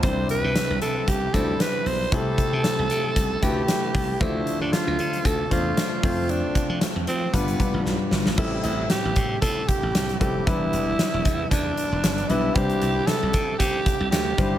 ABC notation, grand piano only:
X:1
M:4/4
L:1/8
Q:"Swing 16ths" 1/4=115
K:Am
V:1 name="Grand piano"
[G,CDE]2 z3 [G,DEc]2 z | [A,EGc]2 z3 [A,EGB]2 z | [F,A,Dc]2 z3 [A,DFc]2 [A,CFc]- | [A,CFc]2 z2 [G,DFB] [G,DFB]2 z |
[G,CEA]2 z4 z [G,CEA] | [G,DEB]2 z4 z [G,DEB] | [G,DEc]2 z4 z [G,DEc] |]
V:2 name="Grand piano" clef=bass
C,3 z4 z | C,3 z4 z | D,3 z4 z | z4 G,,3 z |
A,,3 z4 z | E,3 z4 z | C,3 z4 z |]